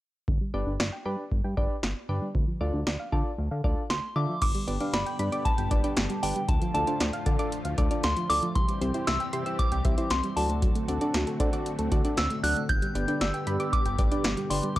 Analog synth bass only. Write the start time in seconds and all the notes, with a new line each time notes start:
0.28 G1
0.54 G1
0.67 G1
0.80 G1
1.06 G2
1.32 G1
1.44 G2
1.57 G1
1.83 G1
2.09 G2
2.35 D2
2.61 D2
2.74 D2
2.87 D2
3.12 D3
3.38 D2
3.51 D3
3.64 D2
3.90 D2
4.16 D3
4.42 G1
4.68 G1
4.93 G1
5.19 G2
5.58 G1
5.71 G1
5.97 G1
6.23 G1
6.49 D2
6.74 D2
7.00 D2
7.26 D3
7.65 D2
7.78 D2
8.04 D2
8.30 D2
8.56 C2
8.81 C2
9.07 C2
9.33 C3
9.72 C2
9.85 C2
10.11 C2
10.37 D2
10.88 D2
11.14 D2
11.40 D3
11.79 D2
11.92 D2
12.18 D2
12.43 D2
12.69 G1
12.95 G1
13.21 G1
13.47 G2
13.86 G1
13.99 G1
14.24 G1
14.50 G1